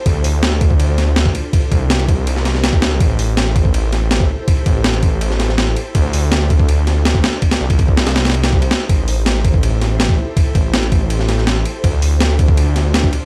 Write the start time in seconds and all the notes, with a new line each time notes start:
Already playing: A4 C5
0.06 D2 D4 F4, kick, ride
0.24 D2, open hi-hat
0.43 snare, ride
0.61 D2, kick, ride
0.71 kick
0.80 ride
0.98 snare, ride
1.16 snare, ride
1.26 kick
1.35 ride
1.53 D#4 G4 A#4 C5, kick, ride
1.72 C2, kick, ride
1.90 snare, ride
2.00 ride
2.08 C2, kick, ride
2.27 ride
2.36 snare
2.45 snare, ride
2.55 snare
2.64 snare, ride
2.73 kick
2.82 D#2, snare, ride
2.91 C2
3.00 A1 E4 G4 A4, kick, ride
3.19 A1, open hi-hat
3.37 snare, ride
3.56 A1, kick, ride
3.65 kick
3.74 ride
3.93 snare, ride
4.11 snare, ride
4.20 kick
4.48 kick, ride
4.66 A1, kick, ride
4.84 snare, ride
4.94 ride
5.03 A1, kick, ride
5.21 ride
5.31 snare
5.40 snare, ride
5.49 snare
5.58 snare, ride
5.76 ride
5.95 D2 D4 F4, kick, ride
6.13 D2, open hi-hat
6.32 snare, ride
6.50 D2, kick, ride
6.59 kick
6.69 ride
6.87 snare, ride
7.05 snare, ride
7.15 kick
7.24 snare, ride
7.42 D#4 G4 A#4 C5, kick, ride
7.51 snare, ride
7.61 C2
7.70 kick, ride
7.79 kick, ride
7.88 kick
7.97 C2, snare, ride
8.07 snare, ride
8.16 snare, ride
8.25 snare, ride
8.30 snare, ride
8.34 ride
8.44 snare, ride
8.53 kick
8.62 ride
8.71 snare, ride
8.89 A1 E4 G4 A4, kick, ride
9.08 A1, open hi-hat
9.26 snare, ride
9.45 A1, kick, ride
9.54 kick
9.63 ride
9.82 snare, ride
10.00 snare, ride
10.09 kick
10.37 kick, ride
10.55 A1, kick, ride
10.74 snare, ride
10.83 ride
10.92 A1, kick, ride
11.10 ride
11.19 snare
11.29 snare, ride
11.38 snare
11.47 snare, ride
11.65 ride
11.84 D2 D4 F4, kick, ride
12.02 D2, open hi-hat
12.20 snare, ride
12.39 D2, kick, ride
12.48 kick
12.57 ride
12.76 snare, ride
12.94 snare, ride
13.04 kick
13.13 ride